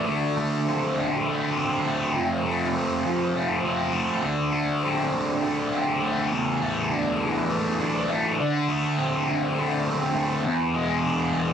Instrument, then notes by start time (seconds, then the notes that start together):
distorted electric guitar
Already playing: A3
0.07 D3
0.37 A3
0.67 C4
0.97 D3
1.27 A3
1.57 C4
1.87 A3
2.16 F2
2.45 A3
2.75 C4
3.05 F3
3.35 A3
3.65 C4
3.93 A3
4.22 D3
4.53 A3
4.83 C4
5.13 D3
5.42 A3
5.72 C4
6.02 A3
6.32 E2
6.62 A3
6.91 D4
7.20 E3
7.51 A3
7.81 D4
8.10 A3
8.41 D3
8.68 A3
8.98 C4
9.28 D3
9.57 A3
9.86 C4
10.15 A3
10.44 E2
10.74 G#3
11.04 D4
11.33 E3